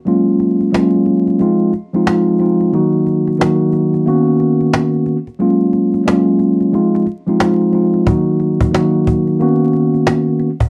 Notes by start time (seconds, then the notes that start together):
0.05 F#3 G#3 A#3 C#4 F4, cajon slap
0.40 cajon slap
0.61 cajon slap
0.72 F#3 G#3 A#3 C#4 F4, cajon slap
0.95 cajon slap
1.06 cajon slap
1.27 cajon slap
1.39 F3 G#3 C4 D#4 F4, cajon slap
1.73 cajon slap
1.93 F3 G#3 C4 D#4 F4, cajon slap
2.06 F3 G#3 C4 D#4 F4, cajon slap
2.28 cajon slap
2.39 F3 G#3 C4 D#4 F4, cajon slap
2.61 cajon slap
2.72 D#3 F#3 A#3 D#4 F#4, cajon slap
3.06 cajon slap
3.27 cajon slap
3.38 D#3 F#3 A#3 D#4 F#4, cajon slap
3.62 cajon slap
3.73 cajon slap
3.94 cajon slap
4.06 D#3 A#3 B3 C#4 F#4, cajon slap
4.40 cajon slap
4.61 cajon slap
4.74 cajon slap
4.95 cajon slap
5.06 cajon slap
5.27 cajon slap
5.39 F#3 G#3 A#3 C#4 F4, cajon slap
5.73 cajon slap
5.94 cajon slap
6.05 F#3 G#3 A#3 C#4 F4, cajon slap
6.28 cajon slap
6.39 cajon slap
6.60 cajon slap
6.72 F3 G#3 C4 D#4 F4, cajon slap
6.95 cajon slap
7.07 cajon slap
7.26 F3 G#3 C4 D#4 F4, cajon slap
7.39 F3 G#3 C4 D#4 F4, cajon slap
7.62 cajon slap
7.72 F3 G#3 C4 D#4 F4, cajon slap
7.94 cajon slap
8.06 D#3 F#3 A#3 D#4 F#4, cajon bass
8.40 cajon slap
8.61 cajon bass
8.72 D#3 F#3 A#3 D#4 F#4, cajon slap
8.95 cajon slap
9.07 cajon bass
9.27 cajon slap
9.39 D#3 A#3 B3 C#4 F#4, cajon slap
9.73 cajon slap
9.94 cajon slap
10.07 cajon slap
10.28 cajon slap
10.39 cajon slap
10.60 cajon bass